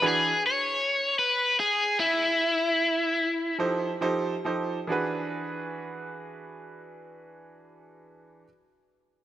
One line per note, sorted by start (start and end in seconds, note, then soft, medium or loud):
0.02 0.31 E3 medium
0.02 0.30 D4 medium
0.02 0.31 F#4 medium
0.02 0.31 G#4 medium
0.02 0.31 B4 medium
0.07 0.41 G#4 medium
0.47 1.18 C#5 loud
1.19 1.56 B4 medium
1.60 1.96 G#4 medium
2.00 3.57 E4 loud
3.58 3.90 F3 medium
3.58 3.90 D#4 medium
3.58 3.90 G4 medium
3.58 3.91 A4 medium
3.58 3.91 C5 medium
4.01 4.33 F3 medium
4.01 4.34 D#4 medium
4.01 4.33 G4 medium
4.01 4.34 A4 medium
4.01 4.34 C5 medium
4.45 4.77 F3 medium
4.45 4.77 D#4 medium
4.45 4.78 G4 medium
4.45 4.77 A4 medium
4.45 4.78 C5 medium
4.87 8.43 E3 medium
4.87 8.44 D4 medium
4.87 8.45 F#4 medium
4.87 8.46 G#4 medium
4.92 8.47 B4 medium